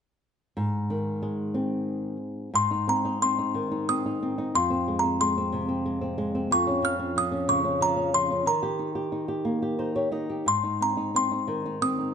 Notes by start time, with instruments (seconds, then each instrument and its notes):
0.57 nylon-string guitar G#2
0.90 nylon-string guitar D#3
1.22 nylon-string guitar G#3
1.54 nylon-string guitar C4
2.54 nylon-string guitar G#2, music box C6
2.71 nylon-string guitar D#4
2.88 nylon-string guitar C4, music box A#5
3.05 nylon-string guitar D#4
3.22 nylon-string guitar C4, music box C6
3.39 nylon-string guitar D#4
3.54 nylon-string guitar D#3
3.71 nylon-string guitar D#4
3.89 nylon-string guitar C4, music box D#6
4.06 nylon-string guitar D#4
4.23 nylon-string guitar C4
4.38 nylon-string guitar D#4
4.55 nylon-string guitar F2, music box C6
4.70 nylon-string guitar C4
4.88 nylon-string guitar G#3
4.99 music box A#5
5.03 nylon-string guitar C4
5.21 nylon-string guitar G#3, music box C6
5.37 nylon-string guitar C4
5.53 nylon-string guitar C3
5.69 nylon-string guitar C4
5.86 nylon-string guitar G#3
6.01 nylon-string guitar C4
6.18 nylon-string guitar G#3
6.35 nylon-string guitar C4
6.51 nylon-string guitar F2, music box C#6
6.67 nylon-string guitar C#4
6.82 nylon-string guitar F3, music box F6
6.99 nylon-string guitar C#4
7.16 nylon-string guitar F3, music box D#6
7.32 nylon-string guitar C#4
7.48 nylon-string guitar C#3, music box C#6
7.64 nylon-string guitar C#4
7.81 nylon-string guitar F3, music box A#5
7.96 nylon-string guitar C#4
8.13 nylon-string guitar F3, music box C6
8.31 nylon-string guitar C#4
8.46 nylon-string guitar D#3, music box A#5
8.63 nylon-string guitar G4
8.79 nylon-string guitar D#4
8.95 nylon-string guitar G4
9.12 nylon-string guitar D#4
9.28 nylon-string guitar G4
9.45 nylon-string guitar A#3
9.62 nylon-string guitar G4
9.79 nylon-string guitar D#4 C5
9.95 nylon-string guitar G4 C#5
10.12 nylon-string guitar D#4 D#5
10.29 nylon-string guitar G4
10.46 nylon-string guitar G#2, music box C6
10.63 nylon-string guitar D#4
10.81 nylon-string guitar C4, music box A#5
10.97 nylon-string guitar D#4
11.15 nylon-string guitar C4, music box C6
11.32 nylon-string guitar D#4
11.48 nylon-string guitar D#3
11.66 nylon-string guitar D#4
11.81 nylon-string guitar C4, music box D#6
11.98 nylon-string guitar D#4